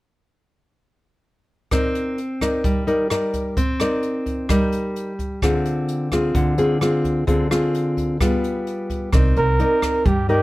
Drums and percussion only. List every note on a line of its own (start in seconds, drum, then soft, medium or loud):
1.71 kick soft
1.71 cross-stick medium
1.71 closed hi-hat soft
1.95 closed hi-hat soft
2.18 closed hi-hat soft
2.41 kick soft
2.41 cross-stick soft
2.41 closed hi-hat soft
2.64 kick medium
2.64 closed hi-hat medium
2.88 closed hi-hat soft
3.10 cross-stick medium
3.10 closed hi-hat soft
3.34 kick soft
3.34 closed hi-hat soft
3.57 kick medium
3.57 closed hi-hat medium
3.80 cross-stick medium
3.80 closed hi-hat soft
4.03 closed hi-hat soft
4.26 kick soft
4.26 closed hi-hat soft
4.49 kick medium
4.49 cross-stick medium
4.49 closed hi-hat soft
4.72 closed hi-hat soft
4.96 closed hi-hat soft
5.19 kick soft
5.19 closed hi-hat soft
5.42 kick soft
5.42 cross-stick medium
5.42 closed hi-hat soft
5.65 closed hi-hat soft
5.88 closed hi-hat soft
6.12 kick soft
6.12 cross-stick soft
6.12 closed hi-hat soft
6.35 kick medium
6.35 closed hi-hat medium
6.58 closed hi-hat soft
6.81 cross-stick medium
6.81 closed hi-hat soft
7.04 kick soft
7.04 closed hi-hat soft
7.28 kick medium
7.28 closed hi-hat medium
7.51 cross-stick medium
7.51 closed hi-hat soft
7.74 closed hi-hat soft
7.97 kick soft
7.97 closed hi-hat soft
8.21 kick medium
8.21 cross-stick medium
8.21 closed hi-hat soft
8.44 closed hi-hat soft
8.67 closed hi-hat soft
8.90 kick soft
8.90 closed hi-hat soft
9.13 kick medium
9.13 cross-stick soft
9.13 closed hi-hat soft
9.36 closed hi-hat soft
9.59 closed hi-hat soft
9.82 kick soft
9.82 cross-stick medium
9.82 closed hi-hat soft
10.06 kick medium
10.06 closed hi-hat soft
10.29 closed hi-hat soft